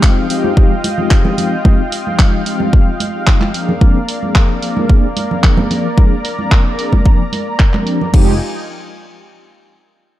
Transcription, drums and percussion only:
0.03 kick, clap
0.30 open hi-hat
0.44 high conga
0.57 kick
0.84 open hi-hat, high conga
0.98 low conga
1.11 kick, clap
1.25 high conga, low conga
1.38 open hi-hat, low conga
1.65 kick, high conga
1.92 open hi-hat
2.07 high conga
2.19 kick, clap
2.46 open hi-hat
2.60 high conga
2.73 kick
3.00 open hi-hat, high conga
3.27 kick, clap
3.41 clap, high conga
3.54 open hi-hat
3.69 low conga
3.81 kick, high conga
4.09 open hi-hat
4.23 high conga
4.35 kick, clap
4.62 open hi-hat
4.77 high conga
4.89 kick
5.16 open hi-hat, high conga
5.31 low conga
5.44 kick, clap
5.57 high conga, low conga
5.71 open hi-hat, low conga
5.98 kick, high conga
6.25 open hi-hat
6.39 high conga
6.52 kick, clap
6.79 open hi-hat
6.93 kick, high conga
7.06 kick
7.32 open hi-hat, high conga
7.60 kick, clap
7.74 clap, high conga
7.87 open hi-hat
8.01 low conga
8.14 kick, crash

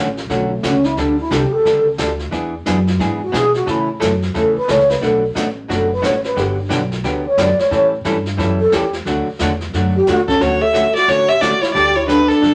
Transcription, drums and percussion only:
0.17 snare
0.30 brush sweep, kick, snare
0.63 kick, snare, hi-hat pedal
0.84 snare
0.97 brush sweep, kick, snare
1.31 kick, snare, hi-hat pedal
1.65 brush sweep, kick, snare
1.98 kick, snare, hi-hat pedal
2.19 snare
2.32 brush sweep, kick, snare
2.66 kick, snare, hi-hat pedal
2.87 snare
3.00 brush sweep, kick, snare
3.33 kick, snare, hi-hat pedal
3.54 snare
3.67 brush sweep, kick, snare
4.01 kick, snare, hi-hat pedal
4.22 snare
4.34 brush sweep, kick, snare
4.68 kick, snare, hi-hat pedal
4.80 snare
4.89 snare
4.91 snare
5.02 brush sweep, kick, snare
5.36 kick, snare, hi-hat pedal
5.69 brush sweep, kick, snare
6.03 kick, snare, hi-hat pedal
6.24 snare
6.37 brush sweep, kick, snare
6.70 kick, snare, hi-hat pedal
6.92 snare
7.04 brush sweep, kick, snare
7.37 kick, snare, hi-hat pedal
7.59 snare
7.71 brush sweep, kick, snare
8.05 kick, snare, hi-hat pedal
8.26 snare
8.38 brush sweep, kick, snare
8.72 kick, snare, hi-hat pedal
8.93 snare
9.06 brush sweep, kick, snare
9.39 kick, snare, hi-hat pedal
9.61 snare
9.73 brush sweep, kick, snare
10.07 kick, snare, hi-hat pedal
10.28 kick, snare
10.40 brush sweep, snare
10.74 kick, snare, hi-hat pedal
10.95 snare
11.08 brush sweep, kick, snare
11.42 kick, snare, hi-hat pedal
11.63 snare
11.75 brush sweep, kick, snare
12.09 kick, snare, hi-hat pedal
12.30 snare
12.42 brush sweep, kick, snare

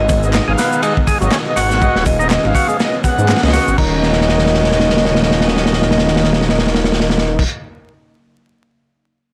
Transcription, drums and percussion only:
0.08 kick, open hi-hat, ride, high conga, shaker
0.23 high bongo, shaker
0.34 snare, clap, ride, shaker
0.48 high conga
0.57 snare, open hi-hat, ride, high bongo, shaker
0.72 shaker
0.82 ride, high bongo, shaker
0.97 kick, high conga
1.07 kick, open hi-hat, ride, shaker
1.21 ride, high bongo, low conga, shaker
1.31 snare, clap, ride, high conga, shaker
1.46 high bongo
1.57 open hi-hat, ride, shaker
1.71 snare, high conga, shaker
1.82 kick, ride, high bongo, shaker
1.95 snare
2.05 kick, open hi-hat, ride, high bongo, high conga, shaker
2.20 shaker
2.31 snare, clap, ride, shaker
2.44 ride, high bongo, high conga
2.55 kick, open hi-hat, ride, shaker
2.69 high bongo, shaker
2.80 snare, ride, shaker
2.94 high conga
3.04 kick, open hi-hat, ride, high bongo, shaker
3.19 low conga, shaker
3.28 snare, clap, ride, high bongo, high conga, shaker
3.36 snare, ride
3.43 snare, ride
3.48 snare, ride
3.53 snare, open hi-hat, ride, shaker
3.67 high bongo, high conga, shaker
3.78 kick, crash
4.03 snare
4.12 snare
4.21 snare
4.29 snare
4.38 snare
4.46 snare
4.54 snare
4.64 snare
4.72 snare
4.80 snare
4.89 snare
4.97 snare
5.05 snare
5.15 snare
5.23 snare
5.31 snare
5.41 snare
5.48 snare
5.57 snare
5.66 snare
5.73 snare
5.82 snare
5.91 snare
5.98 snare
6.07 snare
6.16 snare
6.24 snare
6.33 snare
6.41 snare
6.49 snare
6.59 snare
6.67 snare
6.75 snare
6.84 snare
6.92 snare
7.00 snare
7.10 snare
7.18 snare
7.39 kick, crash

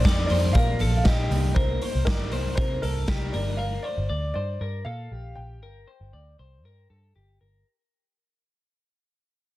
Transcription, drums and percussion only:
0.05 kick, snare, closed hi-hat
0.30 open hi-hat
0.55 kick, closed hi-hat
0.80 open hi-hat
1.05 kick, snare, closed hi-hat
1.31 open hi-hat
1.56 kick, closed hi-hat
1.81 open hi-hat
2.07 kick, snare, closed hi-hat
2.31 open hi-hat
2.57 kick, closed hi-hat
2.83 open hi-hat
3.08 kick, snare, closed hi-hat
3.34 open hi-hat

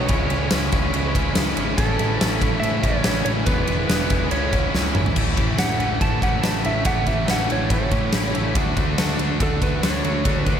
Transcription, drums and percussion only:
0.08 kick, ride
0.30 ride
0.51 snare, ride
0.72 kick, ride
0.94 ride
1.15 kick, ride
1.35 snare, ride
1.57 ride
1.78 kick, ride
1.99 ride
2.21 snare, ride
2.42 kick, ride
2.63 ride
2.83 kick, ride
3.04 snare, ride
3.26 ride
3.46 kick, ride
3.67 ride
3.89 snare, ride
4.10 kick, ride
4.31 ride
4.53 kick, ride
4.75 snare
4.95 mid tom
5.06 floor tom
5.16 kick, crash
5.37 kick, ride
5.58 snare, ride
5.80 ride
6.01 kick, ride
6.22 kick, ride
6.43 snare, ride
6.64 ride
6.85 kick, ride
7.07 kick, ride
7.28 snare, ride
7.50 ride
7.70 kick, ride
7.91 kick, ride
8.12 snare, ride
8.35 ride
8.55 kick, ride
8.77 kick, ride
8.98 snare, ride
9.19 ride
9.40 kick, ride
9.62 kick, ride
9.83 snare, ride
10.04 ride
10.25 kick, ride
10.46 kick, ride

